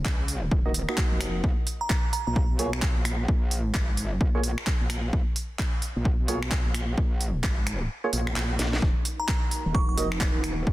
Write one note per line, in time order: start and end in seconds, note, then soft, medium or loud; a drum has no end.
0.05 0.50 C#2 medium
0.05 kick loud
0.05 clap loud
0.28 open hi-hat medium
0.51 0.86 D#1 loud
0.51 kick loud
0.66 0.72 A#3 loud
0.66 0.72 D#4 medium
0.66 0.72 F#4 medium
0.66 0.72 D#5 loud
0.74 open hi-hat loud
0.89 1.43 A#3 medium
0.89 1.43 D#4 medium
0.89 1.43 F#4 medium
0.89 1.43 D#5 loud
0.89 finger snap medium
0.98 kick loud
0.98 clap loud
1.12 1.42 F1 medium
1.21 finger snap medium
1.21 open hi-hat loud
1.44 1.56 A#1 loud
1.44 kick loud
1.67 open hi-hat loud
1.81 2.12 A#5 medium
1.90 kick loud
1.90 clap loud
2.13 2.22 A#5 medium
2.13 open hi-hat medium
2.27 2.48 A#1 loud
2.27 2.33 A#5 medium
2.36 kick loud
2.50 2.94 B1 loud
2.59 2.70 A#3 loud
2.59 2.70 F4 medium
2.59 2.70 G#4 medium
2.59 2.70 C#5 loud
2.59 open hi-hat loud
2.73 finger snap medium
2.82 kick loud
2.82 clap loud
2.96 3.27 A#1 loud
3.05 finger snap medium
3.05 open hi-hat medium
3.28 3.73 A#1 loud
3.28 kick loud
3.51 open hi-hat loud
3.74 4.19 G#1 medium
3.74 kick loud
3.74 clap loud
3.97 open hi-hat medium
4.21 4.56 A#1 loud
4.21 kick loud
4.35 4.41 A#3 medium
4.35 4.41 F4 medium
4.35 4.41 G#4 medium
4.35 4.41 C#5 loud
4.44 open hi-hat loud
4.58 finger snap medium
4.67 kick loud
4.67 clap loud
4.81 5.11 A#1 loud
4.90 finger snap medium
4.90 open hi-hat medium
5.13 5.25 A#1 loud
5.13 kick loud
5.36 open hi-hat loud
5.59 kick loud
5.59 clap loud
5.82 open hi-hat medium
5.96 6.17 A#1 loud
6.05 kick loud
6.19 6.63 B1 loud
6.28 6.39 A#3 loud
6.28 6.39 F4 medium
6.28 6.39 G#4 medium
6.28 6.39 C#5 loud
6.28 open hi-hat loud
6.43 finger snap medium
6.51 kick loud
6.51 clap loud
6.66 6.96 A#1 loud
6.74 finger snap medium
6.74 open hi-hat medium
6.98 7.42 A#1 loud
6.98 kick loud
7.21 open hi-hat loud
7.44 7.88 G#1 loud
7.44 kick loud
7.44 clap loud
7.67 finger snap medium
7.67 open hi-hat medium
8.04 8.11 A#3 medium
8.04 8.11 F4 medium
8.04 8.11 G#4 medium
8.04 8.11 C#5 loud
8.13 8.35 A#1 loud
8.13 open hi-hat loud
8.27 finger snap medium
8.36 8.58 A#1 loud
8.36 clap loud
8.59 8.81 A#1 medium
8.59 snare medium
8.59 open hi-hat medium
8.73 snare medium
8.82 8.94 D#1 loud
8.82 10.73 D#4 medium
8.82 10.73 A#4 medium
8.82 10.73 F#5 medium
8.82 kick loud
9.05 open hi-hat loud
9.20 9.73 A#5 medium
9.28 kick loud
9.28 clap loud
9.51 open hi-hat medium
9.66 9.86 D#1 loud
9.74 9.84 C#6 medium
9.74 kick loud
9.89 10.33 F1 loud
9.89 9.94 C#6 medium
9.97 10.08 A#3 loud
9.97 10.08 D#4 loud
9.97 10.08 F#4 medium
9.97 10.08 D#5 loud
9.97 open hi-hat loud
10.12 finger snap medium
10.21 kick loud
10.21 clap loud
10.35 10.65 D#1 loud
10.44 finger snap medium
10.44 open hi-hat medium
10.67 10.73 D#1 loud
10.67 kick loud